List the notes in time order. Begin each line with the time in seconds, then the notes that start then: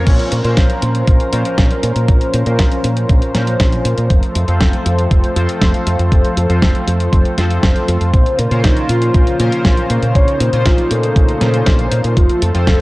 Already playing: A#2 C#4 F4 A#4 C#5
0.07 A#1 F3 C#4 A#4 C5, kick, closed hi-hat, crash
0.19 closed hi-hat
0.32 A#2, closed hi-hat
0.45 A#2 C#4 F4 A#4 C5, closed hi-hat
0.57 A#1, kick, snare, closed hi-hat
0.70 closed hi-hat
0.82 A#2, closed hi-hat
0.95 closed hi-hat
1.07 A#1, kick, closed hi-hat
1.20 closed hi-hat
1.33 A#2 C#4 F4 A#4 C5, closed hi-hat
1.45 closed hi-hat
1.58 A#1, kick, snare, closed hi-hat
1.71 closed hi-hat
1.83 A#2, closed hi-hat
1.96 A#2, closed hi-hat
2.08 A#1, kick, closed hi-hat
2.21 closed hi-hat
2.34 A#2, closed hi-hat
2.46 A#2 C#4 F4 A#4 C5, closed hi-hat
2.59 A#1, kick, snare, closed hi-hat
2.72 closed hi-hat
2.84 A#2, closed hi-hat
2.97 closed hi-hat
3.09 A#1, kick, closed hi-hat
3.22 closed hi-hat
3.35 A#2 C#4 F4 A#4 C5, snare, closed hi-hat
3.47 closed hi-hat
3.60 A#1, kick, snare, closed hi-hat
3.72 closed hi-hat
3.85 A#2, closed hi-hat
3.98 A#2, closed hi-hat
4.10 F1 A3 A4, kick, closed hi-hat
4.23 closed hi-hat
4.35 F2, closed hi-hat
4.48 F2 F3 C4 F4 A4 C5, closed hi-hat
4.61 F1, kick, snare, closed hi-hat
4.73 closed hi-hat
4.86 F2, closed hi-hat
4.99 closed hi-hat
5.11 F1, kick, closed hi-hat
5.24 closed hi-hat
5.36 F2 F3 C4 F4 A4 C5, closed hi-hat
5.49 closed hi-hat
5.61 F1, kick, snare, closed hi-hat
5.74 closed hi-hat
5.87 F2, closed hi-hat
5.99 F2, closed hi-hat
6.12 F1, kick, closed hi-hat
6.25 closed hi-hat
6.37 F2, closed hi-hat
6.50 F2 F3 C4 F4 A4 C5, closed hi-hat
6.62 F1, kick, snare, closed hi-hat
6.75 closed hi-hat
6.87 F2, closed hi-hat
7.00 closed hi-hat
7.13 F1, kick, closed hi-hat
7.25 closed hi-hat
7.38 F2 F3 C4 F4 A4 C5, snare, closed hi-hat
7.51 closed hi-hat
7.63 F1, kick, snare, closed hi-hat
7.76 closed hi-hat
7.88 F2, closed hi-hat
8.01 F2, closed hi-hat
8.13 A#1 C#3 A#3 F4 C5, kick, closed hi-hat
8.26 closed hi-hat
8.39 A#2 A#4, closed hi-hat
8.51 A#2 C#4 F4 A#4 C5, closed hi-hat
8.64 A#1 D#4, kick, snare, closed hi-hat
8.77 closed hi-hat
8.89 A#2 F4, closed hi-hat
9.02 closed hi-hat
9.14 A#1, kick, closed hi-hat
9.27 closed hi-hat
9.40 A#2 C#4 F4 A#4 C5, closed hi-hat
9.52 closed hi-hat
9.65 A#1, kick, snare, closed hi-hat
9.77 closed hi-hat
9.90 A#2, closed hi-hat
10.03 A#2, closed hi-hat
10.15 A#1 D#4 C#5, kick, closed hi-hat
10.28 closed hi-hat
10.40 A#2 C5, closed hi-hat
10.53 A#2 A#3 C#4 F4 C5, closed hi-hat
10.66 A#1 F4, kick, snare, closed hi-hat
10.78 closed hi-hat
10.91 A#2 A4, closed hi-hat
11.03 closed hi-hat
11.16 A#1, kick, closed hi-hat
11.29 closed hi-hat
11.41 A#2 A#3 C#4 F4 C5, snare, closed hi-hat
11.54 closed hi-hat
11.66 A#1, kick, snare, closed hi-hat
11.79 closed hi-hat
11.92 A#2, closed hi-hat
12.04 A#2, closed hi-hat
12.17 F1 F3 A3 F4 A4, kick, closed hi-hat
12.30 closed hi-hat
12.42 F2 A4, closed hi-hat
12.55 F2 F3 C4 F4 A4 C5, closed hi-hat
12.67 F1, kick, snare, closed hi-hat